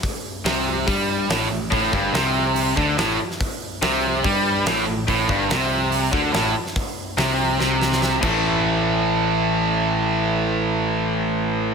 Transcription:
0.03 kick, open hi-hat
0.45 picked electric bass C2, overdriven electric guitar C3, snare, open hi-hat
0.87 picked electric bass G2, overdriven electric guitar G3, kick, open hi-hat
1.29 picked electric bass A1, overdriven electric guitar A2, snare, open hi-hat
1.50 picked electric bass A1, overdriven electric guitar A2
1.70 picked electric bass A1, overdriven electric guitar A2, kick, open hi-hat
1.92 picked electric bass G1, overdriven electric guitar G2, kick
2.12 picked electric bass C2, overdriven electric guitar C3, snare, open hi-hat
2.56 open hi-hat
2.76 picked electric bass D2, overdriven electric guitar D3, kick
2.97 picked electric bass A1, overdriven electric guitar A2, snare, open hi-hat
3.31 snare
3.41 kick, open hi-hat
3.82 picked electric bass C2, overdriven electric guitar C3, snare, open hi-hat
4.24 picked electric bass G2, overdriven electric guitar G3, kick, open hi-hat
4.65 picked electric bass A1, overdriven electric guitar A2, snare, open hi-hat
4.86 picked electric bass A1, overdriven electric guitar A2
5.07 picked electric bass A1, overdriven electric guitar A2, kick, open hi-hat
5.28 picked electric bass G1, overdriven electric guitar G2, kick
5.50 picked electric bass C2, overdriven electric guitar C3, snare, open hi-hat
5.92 open hi-hat
6.12 picked electric bass D2, overdriven electric guitar D3, kick
6.33 picked electric bass A1, overdriven electric guitar A2, snare, open hi-hat
6.66 snare
6.76 kick, open hi-hat
7.17 picked electric bass C2, overdriven electric guitar C3, snare, open hi-hat
7.59 picked electric bass C2, overdriven electric guitar C3, snare
7.81 snare
7.92 snare
8.02 snare
8.21 picked electric bass A1, overdriven electric guitar A2 E3 A3, kick, crash

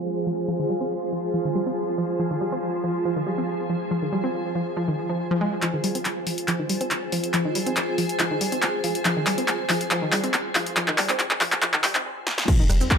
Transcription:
Already playing: synth drone F3 F4, ambient pad F4 G#4 C5 G#5
0.27 synth arpeggio sound F3
0.48 synth arpeggio sound F3
0.59 synth arpeggio sound D#3
0.70 synth arpeggio sound G3
0.81 synth arpeggio sound C4
1.12 synth arpeggio sound F3
1.34 synth arpeggio sound F3
1.45 synth arpeggio sound D#3
1.55 synth arpeggio sound G3
1.66 synth arpeggio sound C4
1.98 synth arpeggio sound F3
2.19 synth arpeggio sound F3
2.31 synth arpeggio sound D#3
2.41 synth arpeggio sound G3
2.52 synth arpeggio sound C4
2.84 synth arpeggio sound F3
3.05 synth arpeggio sound F3
3.16 synth arpeggio sound D#3
3.27 synth arpeggio sound G3
3.38 synth arpeggio sound C4
3.70 synth arpeggio sound F3
3.91 synth arpeggio sound F3
4.02 synth arpeggio sound D#3
4.12 synth arpeggio sound G3
4.24 synth arpeggio sound C4
4.55 synth arpeggio sound F3
4.77 synth arpeggio sound F3
4.88 synth arpeggio sound D#3
5.09 synth arpeggio sound F3
5.31 synth arpeggio sound F3
5.41 synth arpeggio sound G#3
5.62 synth arpeggio sound F3, ambient pad F4, clap, closed hi-hat
5.71 synth arpeggio sound D#3, ambient pad C5
5.84 synth arpeggio sound G3, open hi-hat
5.90 ambient pad G#4
5.95 synth arpeggio sound C4, closed hi-hat
6.05 clap, closed hi-hat
6.16 ambient pad G#5
6.27 synth arpeggio sound F3, open hi-hat
6.38 closed hi-hat
6.48 synth arpeggio sound F3, clap, closed hi-hat
6.59 synth arpeggio sound D#3
6.69 synth arpeggio sound G3, open hi-hat
6.81 synth arpeggio sound C4, closed hi-hat
6.91 clap, closed hi-hat
7.12 synth arpeggio sound F3, open hi-hat
7.24 closed hi-hat
7.34 synth arpeggio sound F3, clap, closed hi-hat
7.45 synth arpeggio sound D#3
7.55 synth arpeggio sound G3, open hi-hat
7.66 synth arpeggio sound C4, closed hi-hat
7.77 clap, closed hi-hat
7.98 synth arpeggio sound F3, open hi-hat
8.09 closed hi-hat
8.20 synth arpeggio sound F3, clap, closed hi-hat
8.31 synth arpeggio sound D#3
8.41 synth arpeggio sound G3, open hi-hat
8.52 synth arpeggio sound C4, closed hi-hat
8.62 clap, closed hi-hat
8.84 synth arpeggio sound F3, open hi-hat
8.95 closed hi-hat
9.05 synth arpeggio sound F3, clap, closed hi-hat
9.16 synth arpeggio sound D#3
9.27 synth arpeggio sound G3, clap, open hi-hat
9.38 synth arpeggio sound C4, closed hi-hat
9.48 clap, closed hi-hat
9.70 synth arpeggio sound F3, clap, open hi-hat
9.81 closed hi-hat
9.91 synth arpeggio sound F3, clap, closed hi-hat
10.02 synth arpeggio sound D#3
10.12 synth arpeggio sound G3, clap, open hi-hat
10.24 synth arpeggio sound C4, closed hi-hat
10.34 clap, closed hi-hat
10.55 synth arpeggio sound F3, clap, open hi-hat
10.66 closed hi-hat
10.77 synth arpeggio sound F3, clap, closed hi-hat
10.88 synth arpeggio sound D#3, clap
10.98 synth arpeggio sound G3, clap, open hi-hat
11.09 synth arpeggio sound C4, clap, closed hi-hat
11.20 clap, closed hi-hat
11.31 clap
11.41 synth arpeggio sound F3, clap, open hi-hat
11.52 clap, closed hi-hat
11.62 synth arpeggio sound F3, clap, closed hi-hat
11.74 synth arpeggio sound D#3, clap
11.84 synth arpeggio sound G3, clap, open hi-hat
11.95 synth arpeggio sound C4, clap, closed hi-hat
12.27 snare
12.38 snare
12.48 synth arpeggio sound F3, kick, closed hi-hat, crash, sub drop, shaker
12.59 sub bass F1, synth arpeggio sound D#3
12.69 sub bass F1, synth arpeggio sound G3, cross-stick, open hi-hat, shaker
12.81 synth arpeggio sound C4, closed hi-hat, shaker
12.91 kick, cross-stick, clap, closed hi-hat, shaker

